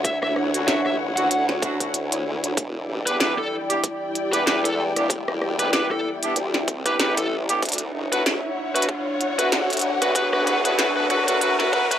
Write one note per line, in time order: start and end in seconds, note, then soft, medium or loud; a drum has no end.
0.00 0.20 D2 loud
0.00 2.54 D4 medium
0.00 11.99 E4 medium
0.00 2.53 C#5 medium
0.00 2.57 C#5 medium
0.00 2.53 E5 medium
0.00 2.53 F#5 medium
0.00 2.58 F#5 medium
0.05 0.16 E5 medium
0.05 kick loud
0.05 closed hi-hat medium
0.22 0.66 D2 loud
0.22 0.31 E5 medium
0.22 cross-stick soft
0.36 cross-stick soft
0.54 0.66 C#4 medium
0.54 0.66 D4 medium
0.54 0.66 E4 medium
0.54 0.66 F#4 medium
0.54 closed hi-hat soft
0.67 0.83 A1 loud
0.67 0.86 C#4 medium
0.67 0.86 D4 medium
0.67 0.86 E4 medium
0.67 0.86 F#4 medium
0.67 0.79 E5 medium
0.67 snare loud
0.67 closed hi-hat medium
0.85 1.15 A1 loud
0.85 0.94 E5 medium
0.85 cross-stick soft
1.16 1.29 D2 loud
1.16 1.32 C#4 medium
1.16 1.32 D4 medium
1.16 1.32 E4 medium
1.16 1.32 F#4 loud
1.16 1.26 F#5 medium
1.16 closed hi-hat soft
1.30 2.24 D2 medium
1.30 1.42 F#5 medium
1.30 closed hi-hat medium
1.49 snare soft
1.62 1.76 C#4 medium
1.62 1.76 D4 medium
1.62 1.76 E4 medium
1.62 1.76 F#4 loud
1.62 kick loud
1.62 closed hi-hat soft
1.80 1.95 C#4 medium
1.80 1.95 D4 medium
1.80 1.95 E4 medium
1.80 1.95 F#4 medium
1.80 kick medium
1.80 closed hi-hat medium
1.94 closed hi-hat medium
2.12 closed hi-hat medium
2.26 2.55 D2 medium
2.44 closed hi-hat medium
2.57 2.87 E1 loud
2.57 7.59 E4 medium
2.57 7.59 G4 medium
2.57 5.08 D5 medium
2.57 kick loud
2.57 closed hi-hat medium
2.57 riser medium
2.69 7.63 D5 medium
2.85 3.04 A1 loud
2.85 7.63 G5 medium
3.06 3.35 E2 loud
3.06 3.19 B3 medium
3.06 3.19 D4 medium
3.06 3.19 E4 medium
3.06 3.19 G4 medium
3.06 3.15 B4 medium
3.06 closed hi-hat soft
3.20 3.39 B3 medium
3.20 3.39 D4 medium
3.20 3.39 E4 medium
3.20 3.39 G4 medium
3.20 3.32 B4 medium
3.20 snare loud
3.20 closed hi-hat medium
3.38 3.54 A4 medium
3.70 3.81 B3 medium
3.70 3.81 D4 medium
3.70 3.82 E4 medium
3.70 3.81 G4 loud
3.70 closed hi-hat soft
3.84 kick loud
3.84 closed hi-hat medium
4.15 closed hi-hat soft
4.33 4.93 E2 loud
4.33 4.45 B3 medium
4.33 4.45 D4 medium
4.33 4.45 E4 medium
4.33 4.45 G4 medium
4.33 4.42 B4 medium
4.33 closed hi-hat medium
4.46 4.65 B3 medium
4.46 4.65 D4 medium
4.46 4.65 E4 medium
4.46 4.65 G4 medium
4.46 4.58 B4 medium
4.46 snare loud
4.46 closed hi-hat medium
4.65 4.81 A4 medium
4.65 closed hi-hat medium
4.96 5.25 E1 loud
4.96 5.08 B3 medium
4.96 5.08 D4 medium
4.96 5.08 E4 medium
4.96 5.08 G4 medium
4.96 cross-stick soft
4.96 closed hi-hat soft
5.10 11.99 E5 medium
5.10 kick loud
5.10 closed hi-hat medium
5.28 5.71 E1 loud
5.28 cross-stick medium
5.42 cross-stick soft
5.59 5.71 B3 medium
5.59 5.71 D4 medium
5.59 5.71 E4 medium
5.59 5.71 G4 medium
5.59 5.68 B4 medium
5.59 closed hi-hat soft
5.73 5.91 B3 medium
5.73 5.91 D4 medium
5.73 5.91 E4 medium
5.73 5.91 G4 loud
5.73 5.85 B4 medium
5.73 snare loud
5.73 closed hi-hat medium
5.91 6.07 A4 medium
5.91 cross-stick soft
6.23 6.34 B3 medium
6.23 6.34 D4 medium
6.23 6.34 E4 medium
6.23 6.34 G4 loud
6.23 closed hi-hat soft
6.36 6.97 D2 medium
6.36 closed hi-hat medium
6.54 snare soft
6.68 kick loud
6.68 closed hi-hat soft
6.86 6.97 B3 medium
6.86 6.97 D4 medium
6.86 6.97 E4 medium
6.86 6.97 G4 loud
6.86 6.95 B4 medium
6.86 kick medium
6.86 closed hi-hat soft
6.99 7.60 A1 loud
6.99 7.18 B3 medium
6.99 7.18 D4 medium
6.99 7.18 E4 medium
6.99 7.18 G4 loud
6.99 7.11 B4 medium
6.99 snare loud
6.99 closed hi-hat medium
7.17 7.34 A4 medium
7.17 closed hi-hat medium
7.49 7.61 B3 loud
7.49 7.61 D4 medium
7.49 7.61 E4 medium
7.49 7.61 G4 loud
7.49 closed hi-hat medium
7.62 7.92 D2 loud
7.62 11.99 D4 medium
7.62 11.99 C#5 medium
7.62 11.99 F#5 medium
7.62 kick loud
7.62 closed hi-hat soft
7.65 closed hi-hat soft
7.69 closed hi-hat soft
7.72 closed hi-hat soft
7.72 closed hi-hat medium
7.78 closed hi-hat medium
7.82 11.99 C#5 medium
7.94 8.09 F#1 loud
8.12 8.41 D2 loud
8.12 8.24 B3 medium
8.12 8.24 D4 medium
8.12 8.24 E4 medium
8.12 8.24 F#4 medium
8.12 8.21 B4 medium
8.12 closed hi-hat medium
8.26 snare loud
8.26 closed hi-hat medium
8.48 11.99 F#5 medium
8.75 8.87 B3 medium
8.75 8.87 D4 medium
8.75 8.87 E4 medium
8.75 8.87 F#4 loud
8.75 8.84 B4 medium
8.75 closed hi-hat medium
8.82 closed hi-hat medium
8.89 kick loud
9.21 closed hi-hat soft
9.38 9.99 D2 loud
9.38 9.50 B3 medium
9.38 9.50 D4 medium
9.38 9.50 E4 medium
9.38 9.50 F#4 loud
9.38 9.47 B4 medium
9.38 closed hi-hat medium
9.52 snare loud
9.52 closed hi-hat medium
9.70 closed hi-hat soft
9.73 closed hi-hat soft
9.77 closed hi-hat soft
9.79 closed hi-hat soft
9.81 closed hi-hat medium
10.01 10.30 D2 loud
10.01 10.13 B3 medium
10.01 10.13 D4 medium
10.01 10.13 E4 medium
10.01 10.13 F#4 loud
10.01 10.11 B4 medium
10.01 cross-stick soft
10.01 closed hi-hat medium
10.15 10.30 B3 loud
10.15 10.30 D4 medium
10.15 10.30 E4 medium
10.15 10.30 F#4 loud
10.15 10.27 B4 medium
10.15 kick loud
10.15 closed hi-hat medium
10.33 10.76 D2 loud
10.33 10.45 B3 loud
10.33 10.45 D4 medium
10.33 10.45 E4 medium
10.33 10.45 F#4 loud
10.33 10.42 B4 medium
10.33 cross-stick medium
10.47 10.62 B3 loud
10.47 10.62 D4 medium
10.47 10.62 E4 medium
10.47 10.62 F#4 loud
10.47 10.58 B4 medium
10.47 cross-stick soft
10.47 closed hi-hat soft
10.65 10.76 B3 medium
10.65 10.76 D4 medium
10.65 10.76 E4 medium
10.65 10.76 F#4 medium
10.65 10.74 B4 medium
10.65 closed hi-hat medium
10.78 11.08 D2 loud
10.78 10.94 B3 loud
10.78 10.94 D4 medium
10.78 10.94 E4 medium
10.78 10.94 F#4 loud
10.78 10.90 B4 medium
10.78 snare loud
10.78 closed hi-hat medium
10.96 11.08 B3 medium
10.96 11.08 D4 medium
10.96 11.08 E4 medium
10.96 11.08 F#4 loud
10.96 11.05 B4 medium
10.96 cross-stick soft
11.00 cross-stick soft
11.04 cross-stick soft
11.07 11.25 B3 loud
11.07 11.25 D4 medium
11.07 11.25 E4 medium
11.07 11.25 F#4 loud
11.07 cross-stick soft
11.10 11.22 B4 loud
11.10 cross-stick soft
11.10 closed hi-hat soft
11.15 cross-stick soft
11.19 cross-stick soft
11.24 11.39 E4 medium
11.24 cross-stick soft
11.28 11.39 B3 loud
11.28 11.39 D4 medium
11.28 11.39 F#4 loud
11.28 11.37 B4 medium
11.28 closed hi-hat medium
11.41 11.57 B3 medium
11.41 11.57 D4 medium
11.41 11.57 E4 medium
11.41 11.57 F#4 loud
11.41 11.53 B4 medium
11.41 closed hi-hat medium
11.41 reverse cymbal medium
11.59 11.71 B3 loud
11.59 11.71 D4 medium
11.59 11.71 E4 medium
11.59 11.71 F#4 loud
11.59 11.68 B4 medium
11.59 snare soft
11.73 11.88 B3 loud
11.73 11.88 D4 medium
11.73 11.88 E4 medium
11.73 11.88 F#4 loud
11.73 11.85 B4 medium
11.73 kick loud
11.91 11.99 B3 medium
11.91 11.99 D4 medium
11.91 11.99 E4 medium
11.91 11.99 F#4 loud
11.91 11.99 B4 medium
11.91 kick medium
11.91 closed hi-hat medium